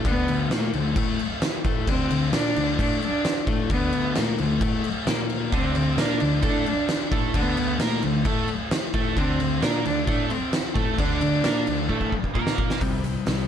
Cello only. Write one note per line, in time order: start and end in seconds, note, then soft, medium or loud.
0.07 0.48 B3 loud
0.56 0.74 A3 medium
0.77 1.18 A3 medium
1.89 2.30 C4 loud
2.33 2.75 D4 loud
2.80 3.00 D4 loud
3.03 3.45 D4 loud
3.72 4.18 B3 loud
4.17 4.39 A3 loud
4.41 4.82 A3 medium
5.54 6.02 C4 loud
6.00 6.44 D4 loud
6.46 6.66 D4 loud
6.67 7.09 D4 loud
7.38 7.82 B3 loud
7.80 8.03 A3 loud
8.04 8.46 A3 medium
9.17 9.64 C4 loud
9.63 9.85 D4 loud
9.86 10.06 D4 loud
10.07 10.28 D4 medium
10.29 10.72 C4 medium
10.98 12.31 D4 loud